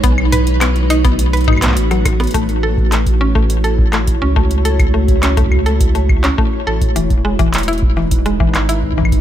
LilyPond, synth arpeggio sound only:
\new Staff \with { instrumentName = "Synth arpeggio sound" } { \time 4/4 \key a \lydian \tempo 4 = 104 b16 r16 b'16 r16 b16 r16 dis'16 b16 r16 b'16 dis'16 b16 r16 fis16 r16 b16 | a16 r16 a'16 r16 a16 r16 cis'16 a16 r16 a'16 r16 a16 r16 cis'16 a16 r16 | a'16 r16 a16 r16 cis'16 a16 r16 a'16 r16 a16 r16 cis'16 a16 r16 a'16 r16 | e16 r16 gis16 e16 r16 e'16 r16 e16 r16 gis16 e16 r16 e'16 r16 e16 r16 | }